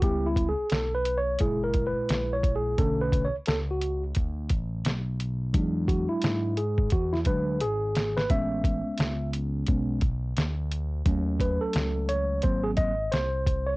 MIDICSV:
0, 0, Header, 1, 4, 480
1, 0, Start_track
1, 0, Tempo, 689655
1, 16, Time_signature, 4, 2, 24, 8
1, 9583, End_track
2, 0, Start_track
2, 0, Title_t, "Tine electric piano"
2, 0, Program_c, 0, 4
2, 13, Note_on_c, 0, 55, 57
2, 18, Note_on_c, 0, 59, 53
2, 21, Note_on_c, 0, 64, 61
2, 23, Note_on_c, 0, 67, 95
2, 175, Note_off_c, 0, 64, 0
2, 183, Note_on_c, 0, 64, 82
2, 184, Note_off_c, 0, 67, 0
2, 329, Note_off_c, 0, 64, 0
2, 340, Note_on_c, 0, 68, 88
2, 352, Note_off_c, 0, 55, 0
2, 355, Note_off_c, 0, 59, 0
2, 487, Note_off_c, 0, 68, 0
2, 500, Note_on_c, 0, 69, 92
2, 647, Note_off_c, 0, 69, 0
2, 659, Note_on_c, 0, 71, 101
2, 819, Note_on_c, 0, 73, 103
2, 823, Note_off_c, 0, 71, 0
2, 966, Note_off_c, 0, 73, 0
2, 972, Note_on_c, 0, 56, 52
2, 975, Note_on_c, 0, 46, 47
2, 980, Note_on_c, 0, 64, 58
2, 981, Note_on_c, 0, 68, 85
2, 1127, Note_off_c, 0, 68, 0
2, 1139, Note_on_c, 0, 70, 92
2, 1287, Note_off_c, 0, 70, 0
2, 1299, Note_on_c, 0, 71, 90
2, 1620, Note_on_c, 0, 73, 94
2, 1627, Note_off_c, 0, 71, 0
2, 1767, Note_off_c, 0, 73, 0
2, 1778, Note_on_c, 0, 68, 95
2, 1906, Note_off_c, 0, 56, 0
2, 1908, Note_off_c, 0, 46, 0
2, 1910, Note_off_c, 0, 64, 0
2, 1929, Note_on_c, 0, 50, 58
2, 1933, Note_on_c, 0, 57, 52
2, 1938, Note_on_c, 0, 61, 63
2, 1938, Note_on_c, 0, 69, 92
2, 1942, Note_off_c, 0, 68, 0
2, 2086, Note_off_c, 0, 69, 0
2, 2097, Note_on_c, 0, 71, 92
2, 2259, Note_on_c, 0, 73, 86
2, 2262, Note_off_c, 0, 71, 0
2, 2270, Note_off_c, 0, 50, 0
2, 2272, Note_off_c, 0, 57, 0
2, 2275, Note_off_c, 0, 61, 0
2, 2330, Note_off_c, 0, 73, 0
2, 2418, Note_on_c, 0, 69, 91
2, 2490, Note_off_c, 0, 69, 0
2, 2580, Note_on_c, 0, 66, 75
2, 2802, Note_off_c, 0, 66, 0
2, 3851, Note_on_c, 0, 54, 57
2, 3856, Note_on_c, 0, 56, 53
2, 3859, Note_on_c, 0, 62, 64
2, 4093, Note_on_c, 0, 66, 71
2, 4228, Note_off_c, 0, 66, 0
2, 4240, Note_on_c, 0, 64, 89
2, 4546, Note_off_c, 0, 54, 0
2, 4548, Note_off_c, 0, 56, 0
2, 4550, Note_off_c, 0, 62, 0
2, 4576, Note_on_c, 0, 68, 81
2, 4586, Note_off_c, 0, 64, 0
2, 4799, Note_off_c, 0, 68, 0
2, 4818, Note_on_c, 0, 66, 79
2, 4962, Note_on_c, 0, 64, 89
2, 4965, Note_off_c, 0, 66, 0
2, 5005, Note_off_c, 0, 64, 0
2, 5056, Note_on_c, 0, 54, 50
2, 5059, Note_on_c, 0, 56, 46
2, 5060, Note_on_c, 0, 71, 88
2, 5061, Note_on_c, 0, 62, 57
2, 5272, Note_off_c, 0, 54, 0
2, 5274, Note_off_c, 0, 56, 0
2, 5275, Note_off_c, 0, 62, 0
2, 5300, Note_on_c, 0, 68, 99
2, 5305, Note_off_c, 0, 71, 0
2, 5685, Note_on_c, 0, 71, 98
2, 5693, Note_off_c, 0, 68, 0
2, 5772, Note_off_c, 0, 71, 0
2, 5773, Note_on_c, 0, 56, 57
2, 5777, Note_on_c, 0, 59, 51
2, 5780, Note_on_c, 0, 76, 100
2, 5781, Note_on_c, 0, 61, 62
2, 6470, Note_off_c, 0, 76, 0
2, 6725, Note_off_c, 0, 56, 0
2, 6729, Note_off_c, 0, 59, 0
2, 6731, Note_off_c, 0, 61, 0
2, 6734, Note_on_c, 0, 56, 46
2, 6738, Note_on_c, 0, 59, 40
2, 6739, Note_on_c, 0, 61, 49
2, 6951, Note_off_c, 0, 56, 0
2, 6953, Note_off_c, 0, 59, 0
2, 6954, Note_off_c, 0, 61, 0
2, 7694, Note_on_c, 0, 54, 59
2, 7698, Note_on_c, 0, 57, 52
2, 7703, Note_on_c, 0, 61, 65
2, 7940, Note_on_c, 0, 71, 85
2, 8082, Note_on_c, 0, 69, 90
2, 8086, Note_off_c, 0, 71, 0
2, 8414, Note_on_c, 0, 73, 103
2, 8427, Note_off_c, 0, 69, 0
2, 8627, Note_off_c, 0, 54, 0
2, 8629, Note_off_c, 0, 57, 0
2, 8632, Note_off_c, 0, 61, 0
2, 8638, Note_off_c, 0, 73, 0
2, 8653, Note_on_c, 0, 72, 89
2, 8654, Note_on_c, 0, 54, 54
2, 8658, Note_on_c, 0, 58, 48
2, 8662, Note_on_c, 0, 60, 60
2, 8788, Note_off_c, 0, 72, 0
2, 8794, Note_on_c, 0, 68, 94
2, 8839, Note_off_c, 0, 68, 0
2, 8888, Note_on_c, 0, 75, 101
2, 8992, Note_off_c, 0, 54, 0
2, 8995, Note_off_c, 0, 58, 0
2, 8997, Note_off_c, 0, 60, 0
2, 9129, Note_on_c, 0, 72, 101
2, 9139, Note_off_c, 0, 75, 0
2, 9512, Note_on_c, 0, 73, 95
2, 9528, Note_off_c, 0, 72, 0
2, 9557, Note_off_c, 0, 73, 0
2, 9583, End_track
3, 0, Start_track
3, 0, Title_t, "Analog synth bass"
3, 0, Program_c, 1, 38
3, 17, Note_on_c, 1, 37, 119
3, 381, Note_off_c, 1, 37, 0
3, 403, Note_on_c, 1, 35, 51
3, 441, Note_off_c, 1, 35, 0
3, 499, Note_on_c, 1, 35, 84
3, 953, Note_off_c, 1, 35, 0
3, 979, Note_on_c, 1, 30, 89
3, 1343, Note_off_c, 1, 30, 0
3, 1365, Note_on_c, 1, 34, 52
3, 1403, Note_off_c, 1, 34, 0
3, 1460, Note_on_c, 1, 34, 91
3, 1914, Note_off_c, 1, 34, 0
3, 1939, Note_on_c, 1, 35, 105
3, 2302, Note_off_c, 1, 35, 0
3, 2324, Note_on_c, 1, 37, 50
3, 2362, Note_off_c, 1, 37, 0
3, 2422, Note_on_c, 1, 37, 99
3, 2875, Note_off_c, 1, 37, 0
3, 2901, Note_on_c, 1, 38, 91
3, 3127, Note_off_c, 1, 38, 0
3, 3136, Note_on_c, 1, 33, 88
3, 3364, Note_off_c, 1, 33, 0
3, 3378, Note_on_c, 1, 35, 90
3, 3858, Note_on_c, 1, 40, 121
3, 3868, Note_off_c, 1, 35, 0
3, 4222, Note_off_c, 1, 40, 0
3, 4246, Note_on_c, 1, 44, 48
3, 4283, Note_off_c, 1, 44, 0
3, 4338, Note_on_c, 1, 44, 89
3, 4793, Note_off_c, 1, 44, 0
3, 4820, Note_on_c, 1, 40, 94
3, 5046, Note_off_c, 1, 40, 0
3, 5054, Note_on_c, 1, 38, 102
3, 5300, Note_on_c, 1, 32, 91
3, 5310, Note_off_c, 1, 38, 0
3, 5754, Note_off_c, 1, 32, 0
3, 5777, Note_on_c, 1, 33, 114
3, 6142, Note_off_c, 1, 33, 0
3, 6164, Note_on_c, 1, 37, 50
3, 6201, Note_off_c, 1, 37, 0
3, 6257, Note_on_c, 1, 37, 99
3, 6713, Note_off_c, 1, 37, 0
3, 6741, Note_on_c, 1, 35, 97
3, 7195, Note_off_c, 1, 35, 0
3, 7218, Note_on_c, 1, 38, 100
3, 7673, Note_off_c, 1, 38, 0
3, 7698, Note_on_c, 1, 39, 119
3, 8062, Note_off_c, 1, 39, 0
3, 8085, Note_on_c, 1, 37, 52
3, 8122, Note_off_c, 1, 37, 0
3, 8179, Note_on_c, 1, 37, 92
3, 8634, Note_off_c, 1, 37, 0
3, 8658, Note_on_c, 1, 32, 99
3, 9113, Note_off_c, 1, 32, 0
3, 9139, Note_on_c, 1, 36, 91
3, 9583, Note_off_c, 1, 36, 0
3, 9583, End_track
4, 0, Start_track
4, 0, Title_t, "Drums"
4, 15, Note_on_c, 9, 36, 109
4, 15, Note_on_c, 9, 42, 86
4, 84, Note_off_c, 9, 36, 0
4, 84, Note_off_c, 9, 42, 0
4, 252, Note_on_c, 9, 36, 96
4, 258, Note_on_c, 9, 42, 70
4, 322, Note_off_c, 9, 36, 0
4, 327, Note_off_c, 9, 42, 0
4, 486, Note_on_c, 9, 42, 73
4, 503, Note_on_c, 9, 38, 118
4, 555, Note_off_c, 9, 42, 0
4, 573, Note_off_c, 9, 38, 0
4, 733, Note_on_c, 9, 42, 84
4, 803, Note_off_c, 9, 42, 0
4, 965, Note_on_c, 9, 42, 88
4, 978, Note_on_c, 9, 36, 87
4, 1034, Note_off_c, 9, 42, 0
4, 1047, Note_off_c, 9, 36, 0
4, 1208, Note_on_c, 9, 42, 69
4, 1213, Note_on_c, 9, 36, 81
4, 1277, Note_off_c, 9, 42, 0
4, 1282, Note_off_c, 9, 36, 0
4, 1454, Note_on_c, 9, 42, 99
4, 1464, Note_on_c, 9, 38, 115
4, 1524, Note_off_c, 9, 42, 0
4, 1534, Note_off_c, 9, 38, 0
4, 1694, Note_on_c, 9, 36, 92
4, 1697, Note_on_c, 9, 42, 68
4, 1763, Note_off_c, 9, 36, 0
4, 1766, Note_off_c, 9, 42, 0
4, 1936, Note_on_c, 9, 42, 86
4, 1937, Note_on_c, 9, 36, 116
4, 2005, Note_off_c, 9, 42, 0
4, 2006, Note_off_c, 9, 36, 0
4, 2174, Note_on_c, 9, 36, 89
4, 2179, Note_on_c, 9, 42, 76
4, 2244, Note_off_c, 9, 36, 0
4, 2248, Note_off_c, 9, 42, 0
4, 2407, Note_on_c, 9, 42, 83
4, 2425, Note_on_c, 9, 38, 123
4, 2477, Note_off_c, 9, 42, 0
4, 2495, Note_off_c, 9, 38, 0
4, 2656, Note_on_c, 9, 42, 81
4, 2725, Note_off_c, 9, 42, 0
4, 2887, Note_on_c, 9, 42, 91
4, 2899, Note_on_c, 9, 36, 99
4, 2957, Note_off_c, 9, 42, 0
4, 2969, Note_off_c, 9, 36, 0
4, 3129, Note_on_c, 9, 42, 75
4, 3134, Note_on_c, 9, 36, 88
4, 3198, Note_off_c, 9, 42, 0
4, 3203, Note_off_c, 9, 36, 0
4, 3375, Note_on_c, 9, 42, 97
4, 3385, Note_on_c, 9, 38, 109
4, 3444, Note_off_c, 9, 42, 0
4, 3454, Note_off_c, 9, 38, 0
4, 3619, Note_on_c, 9, 42, 70
4, 3688, Note_off_c, 9, 42, 0
4, 3856, Note_on_c, 9, 42, 88
4, 3857, Note_on_c, 9, 36, 109
4, 3926, Note_off_c, 9, 36, 0
4, 3926, Note_off_c, 9, 42, 0
4, 4093, Note_on_c, 9, 36, 91
4, 4100, Note_on_c, 9, 42, 70
4, 4163, Note_off_c, 9, 36, 0
4, 4170, Note_off_c, 9, 42, 0
4, 4327, Note_on_c, 9, 42, 82
4, 4344, Note_on_c, 9, 38, 123
4, 4396, Note_off_c, 9, 42, 0
4, 4414, Note_off_c, 9, 38, 0
4, 4573, Note_on_c, 9, 42, 79
4, 4643, Note_off_c, 9, 42, 0
4, 4718, Note_on_c, 9, 36, 92
4, 4787, Note_off_c, 9, 36, 0
4, 4803, Note_on_c, 9, 42, 90
4, 4817, Note_on_c, 9, 36, 94
4, 4872, Note_off_c, 9, 42, 0
4, 4887, Note_off_c, 9, 36, 0
4, 4967, Note_on_c, 9, 38, 34
4, 5036, Note_off_c, 9, 38, 0
4, 5045, Note_on_c, 9, 42, 69
4, 5052, Note_on_c, 9, 36, 88
4, 5115, Note_off_c, 9, 42, 0
4, 5121, Note_off_c, 9, 36, 0
4, 5293, Note_on_c, 9, 42, 95
4, 5362, Note_off_c, 9, 42, 0
4, 5535, Note_on_c, 9, 42, 70
4, 5544, Note_on_c, 9, 38, 93
4, 5605, Note_off_c, 9, 42, 0
4, 5614, Note_off_c, 9, 38, 0
4, 5690, Note_on_c, 9, 38, 92
4, 5759, Note_off_c, 9, 38, 0
4, 5775, Note_on_c, 9, 42, 85
4, 5776, Note_on_c, 9, 36, 112
4, 5844, Note_off_c, 9, 42, 0
4, 5846, Note_off_c, 9, 36, 0
4, 6013, Note_on_c, 9, 36, 97
4, 6018, Note_on_c, 9, 42, 70
4, 6083, Note_off_c, 9, 36, 0
4, 6088, Note_off_c, 9, 42, 0
4, 6247, Note_on_c, 9, 42, 74
4, 6265, Note_on_c, 9, 38, 123
4, 6317, Note_off_c, 9, 42, 0
4, 6334, Note_off_c, 9, 38, 0
4, 6496, Note_on_c, 9, 42, 84
4, 6566, Note_off_c, 9, 42, 0
4, 6727, Note_on_c, 9, 42, 90
4, 6739, Note_on_c, 9, 36, 92
4, 6796, Note_off_c, 9, 42, 0
4, 6808, Note_off_c, 9, 36, 0
4, 6967, Note_on_c, 9, 42, 73
4, 6973, Note_on_c, 9, 36, 84
4, 7037, Note_off_c, 9, 42, 0
4, 7043, Note_off_c, 9, 36, 0
4, 7215, Note_on_c, 9, 42, 101
4, 7225, Note_on_c, 9, 38, 110
4, 7284, Note_off_c, 9, 42, 0
4, 7294, Note_off_c, 9, 38, 0
4, 7458, Note_on_c, 9, 42, 72
4, 7527, Note_off_c, 9, 42, 0
4, 7695, Note_on_c, 9, 42, 89
4, 7696, Note_on_c, 9, 36, 119
4, 7765, Note_off_c, 9, 42, 0
4, 7766, Note_off_c, 9, 36, 0
4, 7933, Note_on_c, 9, 36, 94
4, 7938, Note_on_c, 9, 42, 76
4, 8002, Note_off_c, 9, 36, 0
4, 8007, Note_off_c, 9, 42, 0
4, 8167, Note_on_c, 9, 42, 82
4, 8184, Note_on_c, 9, 38, 120
4, 8236, Note_off_c, 9, 42, 0
4, 8254, Note_off_c, 9, 38, 0
4, 8414, Note_on_c, 9, 42, 82
4, 8484, Note_off_c, 9, 42, 0
4, 8644, Note_on_c, 9, 42, 90
4, 8658, Note_on_c, 9, 36, 97
4, 8713, Note_off_c, 9, 42, 0
4, 8727, Note_off_c, 9, 36, 0
4, 8886, Note_on_c, 9, 42, 72
4, 8892, Note_on_c, 9, 36, 90
4, 8955, Note_off_c, 9, 42, 0
4, 8962, Note_off_c, 9, 36, 0
4, 9133, Note_on_c, 9, 42, 101
4, 9143, Note_on_c, 9, 38, 111
4, 9202, Note_off_c, 9, 42, 0
4, 9212, Note_off_c, 9, 38, 0
4, 9373, Note_on_c, 9, 36, 92
4, 9376, Note_on_c, 9, 42, 74
4, 9442, Note_off_c, 9, 36, 0
4, 9446, Note_off_c, 9, 42, 0
4, 9583, End_track
0, 0, End_of_file